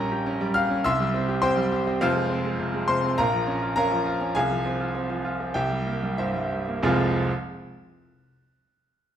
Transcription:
0.00 0.81 A#1 loud
0.00 0.41 G3 medium
0.00 0.21 C#4 medium
0.00 0.51 A#4 loud
0.00 0.51 G5 loud
0.00 0.54 A#5 loud
0.12 0.35 G4 medium
0.26 0.49 C#4 medium
0.41 0.64 G3 medium
0.54 0.78 G4 medium
0.54 0.82 F5 loud
0.54 0.84 F6 loud
0.70 0.84 C#4 medium
0.84 1.98 C2 loud
0.84 1.39 E5 loud
0.84 1.39 C6 loud
0.84 1.43 E6 loud
1.00 1.23 G3 medium
1.14 1.37 C4 medium
1.28 1.51 G4 medium
1.42 1.66 C4 medium
1.42 1.97 C5 loud
1.42 1.97 G5 loud
1.42 2.00 C6 loud
1.57 1.80 G3 medium
1.72 1.95 G4 medium
1.87 2.01 C4 medium
2.01 3.14 F1 medium
2.01 3.15 F2 loud
2.01 2.85 F4 loud
2.01 2.85 C5 loud
2.01 2.88 F5 loud
2.16 2.39 G#3 medium
2.30 2.53 C4 medium
2.45 2.68 G#3 medium
2.60 2.83 C3 medium
2.74 2.97 G#3 medium
2.88 3.12 C3 medium
2.88 3.16 C5 loud
2.88 3.17 C6 loud
3.04 3.18 C4 medium
3.18 4.33 A#1 loud
3.18 3.73 A#4 medium
3.18 3.73 F5 loud
3.18 3.74 A#5 loud
3.33 3.56 F3 medium
3.47 3.71 C#4 medium
3.62 3.86 F4 medium
3.76 4.01 C#4 medium
3.76 4.33 A#4 loud
3.76 4.33 F5 loud
3.76 4.36 A#5 loud
3.92 4.16 F3 medium
4.06 4.30 F4 medium
4.21 4.36 C#4 medium
4.35 5.52 C2 loud
4.35 5.51 G#4 loud
4.35 5.51 F5 loud
4.35 5.55 G#5 loud
4.51 4.75 F3 medium
4.66 4.89 C4 medium
4.80 5.04 F4 medium
4.95 5.19 C4 medium
5.10 5.34 F3 medium
5.25 5.49 F4 medium
5.40 5.56 C4 medium
5.54 6.80 C2 medium
5.54 6.15 G4 medium
5.54 6.15 E5 medium
5.54 6.18 G5 loud
5.71 5.96 G3 medium
5.87 6.12 A#3 medium
6.03 6.29 G3 medium
6.18 6.45 G2 medium
6.18 6.80 E4 medium
6.18 6.80 C5 medium
6.18 6.84 E5 loud
6.35 6.62 G3 medium
6.52 6.78 G2 medium
6.69 6.84 A#3 medium
6.83 7.18 F1 loud
6.83 7.18 C2 loud
6.83 7.18 F3 loud
6.83 7.18 G#3 loud
6.83 7.18 C4 loud
6.83 7.19 F4 loud
6.83 7.18 G#5 medium

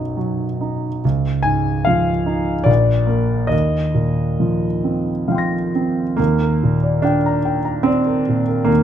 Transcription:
0.00 1.00 B1 soft
0.00 1.05 F#2 soft
0.00 0.17 F#3 soft
0.00 0.43 D#4 soft
0.00 0.17 D#5 medium
0.17 0.86 F#3 soft
0.61 1.03 D#4 soft
1.05 2.65 C#2 soft
1.43 2.11 G#2 soft
1.43 1.85 G#5 medium
1.85 2.52 F3 soft
1.85 2.67 F5 medium
2.26 2.67 D#4 soft
2.64 3.48 A#1 medium
2.64 3.50 D5 medium
3.07 3.47 A#3 soft
3.07 3.47 A#4 soft
3.47 6.13 D#2 soft
3.47 5.71 D#5 medium
3.94 4.66 A#2 soft
4.40 5.11 F3 soft
4.84 5.55 C4 soft
5.28 6.00 F3 soft
5.28 6.14 F5 soft
5.28 6.16 G5 soft
5.35 6.17 C6 soft
5.35 6.19 A#6 soft
5.75 6.19 C4 soft
6.17 8.66 D#2 soft
6.17 7.04 A#3 medium
6.42 6.76 A#4 soft
6.63 6.97 A#2 soft
6.83 7.17 D5 soft
7.02 7.87 D4 medium
7.02 7.38 G5 soft
7.26 7.59 A#5 soft
7.45 7.79 G5 soft
7.65 7.99 A#5 soft
7.83 8.67 C4 medium
7.83 8.20 D5 soft
8.06 8.40 A#4 soft
8.29 8.61 A#2 soft
8.48 8.69 A#4 soft
8.65 8.83 D#2 soft
8.65 8.83 A#3 medium

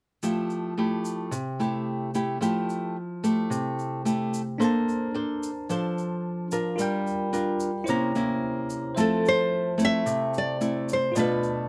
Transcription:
0.23 1.30 F3 medium
0.23 0.73 A3 medium
0.23 0.73 E4 soft
0.23 0.74 G4 medium
0.23 shaker medium
0.50 shaker soft
0.78 1.32 A3 medium
0.78 1.32 E4 medium
0.78 1.32 G4 medium
1.05 shaker medium
1.31 2.38 C3 medium
1.31 shaker medium
1.60 2.10 A3 medium
1.60 2.10 E4 medium
1.60 2.10 G4 medium
1.60 shaker soft
2.14 2.37 A3 medium
2.14 2.38 E4 medium
2.14 2.38 G4 medium
2.14 shaker medium
2.41 3.48 F3 medium
2.41 2.96 A3 medium
2.41 2.96 E4 soft
2.41 2.96 G4 medium
2.41 shaker medium
2.70 shaker soft
3.24 4.01 A3 medium
3.24 4.01 E4 medium
3.24 4.02 G4 medium
3.24 shaker medium
3.50 4.57 C3 medium
3.50 shaker medium
3.79 shaker soft
4.05 4.41 A3 medium
4.05 4.41 E4 medium
4.05 4.41 G4 medium
4.05 shaker soft
4.34 shaker medium
4.58 5.66 A#3 medium
4.58 6.74 D4 soft
4.58 5.10 D4 soft
4.58 5.10 A4 medium
4.58 5.10 C5 medium
4.58 6.75 C5 soft
4.58 shaker medium
4.64 6.77 A5 medium
4.89 shaker soft
5.14 5.50 D4 medium
5.14 5.50 A4 medium
5.14 5.50 C5 medium
5.43 shaker medium
5.69 6.76 F3 medium
5.69 6.47 D4 medium
5.69 6.47 A4 medium
5.69 6.48 C5 medium
5.69 shaker medium
5.98 shaker soft
6.51 7.29 D4 medium
6.51 7.29 F4 medium
6.51 7.29 A#4 medium
6.51 shaker medium
6.76 7.85 G3 medium
6.76 7.84 F4 medium
6.76 7.85 A#4 soft
6.76 shaker medium
6.80 7.86 D5 soft
6.80 7.87 G5 medium
7.07 shaker soft
7.33 7.70 D4 medium
7.33 7.70 F4 medium
7.33 7.70 A#4 medium
7.33 shaker medium
7.60 shaker medium
7.84 8.94 C3 medium
7.84 8.93 E4 medium
7.84 8.94 C5 soft
7.84 shaker medium
7.88 8.11 A#3 medium
7.88 8.11 C#4 medium
7.88 8.11 E4 medium
7.88 8.95 C#5 soft
7.88 8.96 A#5 medium
8.15 8.95 A#3 medium
8.15 8.95 C#4 medium
8.15 8.95 E4 medium
8.15 shaker soft
8.70 shaker medium
8.95 10.03 F3 medium
8.95 9.75 A3 medium
8.95 9.75 C4 soft
8.95 9.75 E4 medium
8.95 11.10 C5 soft
8.95 11.11 E5 soft
8.95 11.12 A5 medium
8.95 shaker medium
9.00 9.27 A4 medium
9.25 9.83 C5 medium
9.25 shaker soft
9.78 10.56 A3 medium
9.78 10.56 C4 medium
9.78 10.56 E4 medium
9.78 shaker medium
9.85 10.38 E5 loud
10.06 11.12 C3 medium
10.06 shaker medium
10.34 shaker soft
10.38 10.92 D5 medium
10.61 10.96 A3 medium
10.61 10.96 C4 medium
10.61 10.96 E4 medium
10.61 shaker medium
10.89 shaker medium
10.93 11.16 C5 medium
11.12 11.69 B2 medium
11.12 11.69 F4 soft
11.12 11.69 B4 soft
11.12 11.69 D5 soft
11.12 shaker medium
11.16 11.69 A3 medium
11.16 11.69 D4 medium
11.16 11.69 F4 medium
11.16 11.68 B4 medium
11.16 11.69 A5 medium
11.43 shaker soft

